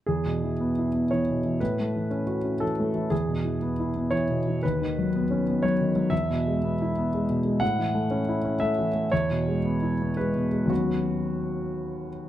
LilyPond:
<<
  \new Staff \with { instrumentName = "Grand piano" } { \time 3/4 \key e \major \tempo 4 = 119 gis'2 cis''4 | b'2 a'4 | gis'2 cis''4 | b'2 cis''4 |
e''2. | fis''2 e''8 r8 | cis''2 b'4 | fis'2~ fis'8 r8 | }
  \new Staff \with { instrumentName = "Grand piano" } { \clef bass \time 3/4 \key e \major \tuplet 3/2 { e,8 b,8 e8 b8 e'8 b8 e8 b,8 e8 } | \tuplet 3/2 { a,8 a8 e8 cis'8 fis'8 cis'8 e8 a8 e8 } | \tuplet 3/2 { e,8 b,8 e8 b8 e'8 b8 e8 b,8 e8 } | \tuplet 3/2 { dis,8 dis8 fis8 b8 cis'8 b8 fis8 dis8 fis8 } |
\tuplet 3/2 { e,8 b,8 gis8 b8 e'8 b8 gis8 b,8 gis8 } | \tuplet 3/2 { a,8 e8 a8 cis'8 e'8 cis'8 a8 e8 a8 } | \tuplet 3/2 { e,8 b,8 gis8 b8 e'8 b8 gis8 b,8 gis8 } | <dis, fis b cis'>2. | }
>>